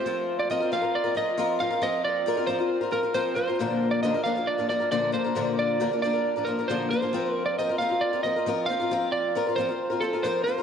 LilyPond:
<<
  \new Staff \with { instrumentName = "Electric slide guitar" } { \time 4/4 \key f \mixolydian \tempo 4 = 136 c''8. d''16 ees''8 f''8 d''8 ees''4 f''8 | ees''8 d''4 c''4 bes'8 c''8 c''8~ | c''8. d''16 ees''8 f''8 d''8 d''8 d''8 c''8~ | c''8 d''4 d''4 bes'8 c''8 c''8~ |
c''8. d''16 ees''8 f''8 d''8 ees''4 f''8~ | f''8 d''4 c''4 a'8 c''8 c''8 | }
  \new Staff \with { instrumentName = "Steel-string acoustic guitar" } { \time 4/4 \key f \mixolydian <f c' f' bes'>4 <f c' f' bes'>16 <c' f' bes'>16 <f c' f' bes'>16 <c' f' bes'>8 <c' f' bes'>16 <f c' f' bes'>8 <f c' f' bes'>8 <f c' f' bes'>16 <c' f' bes'>16 | <f c' f' bes'>4 <f c' f' bes'>16 <c' f' bes'>16 <f c' f' bes'>16 <c' f' bes'>8 <c' f' bes'>16 <f c' f' bes'>16 <c' f' bes'>16 <f c' f' bes'>8 <f c' f' bes'>16 <c' f' bes'>16 | <bes, d f bes d' bes'>4 <bes, d f bes d' bes'>16 <f bes d' bes'>16 <f bes d' bes'>16 <f bes d' bes'>8 <f bes d' bes'>16 <f bes d' bes'>16 <f bes d' bes'>16 <bes, d f bes d' bes'>8 <f bes d' bes'>16 <f bes d' bes'>16 | <bes, d f bes d' bes'>4 <bes, d f bes d' bes'>16 <f bes d' bes'>16 <f bes d' bes'>16 <f bes d' bes'>8 <f bes d' bes'>16 <f bes d' bes'>16 <f bes d' bes'>16 <bes, d f bes d' bes'>8 <f bes d' bes'>16 <f bes d' bes'>16 |
<f c' f' bes'>4 <f c' f' bes'>16 <c' f' bes'>16 <f c' f' bes'>16 <c' f' bes'>8 <c' f' bes'>16 <f c' f' bes'>16 <c' f' bes'>16 <f c' f' bes'>8 <f c' f' bes'>16 <c' f' bes'>16 | <f c' f' bes'>4 <f c' f' bes'>16 <c' f' bes'>16 <f c' f' bes'>16 <c' f' bes'>8 <c' f' bes'>16 <f c' f' bes'>16 <c' f' bes'>16 <f c' f' bes'>8 <f c' f' bes'>16 <f' bes'>16 | }
>>